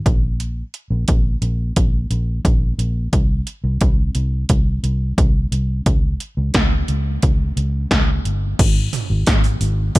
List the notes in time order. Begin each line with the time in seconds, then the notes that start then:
0.06 A#1, kick, closed hi-hat
0.40 closed hi-hat
0.74 closed hi-hat
0.90 A#1
1.08 A#1, kick, closed hi-hat
1.42 A#1, closed hi-hat
1.76 A#1, kick, closed hi-hat
2.10 A#1, closed hi-hat
2.45 A#1, kick, closed hi-hat
2.78 A#1, closed hi-hat
3.13 C2, kick, closed hi-hat
3.47 closed hi-hat
3.64 C2
3.81 C2, kick, closed hi-hat
4.15 C2, closed hi-hat
4.49 C2, kick, closed hi-hat
4.83 C2, closed hi-hat
5.18 C2, kick, closed hi-hat
5.52 C2, closed hi-hat
5.86 C#2, kick, closed hi-hat
6.20 closed hi-hat
6.37 C#2
6.54 C#2, kick, snare, closed hi-hat
6.88 C#2, closed hi-hat
7.22 C#2, kick, closed hi-hat
7.57 C#2, closed hi-hat
7.91 C#2, kick, snare, closed hi-hat
8.25 G1, closed hi-hat
8.59 G#1, kick, open hi-hat, crash
8.93 floor tom, open hi-hat
9.10 G#1
9.27 G#1, kick, snare, open hi-hat
9.44 open hi-hat
9.61 G#1, open hi-hat
9.95 G#1, kick, open hi-hat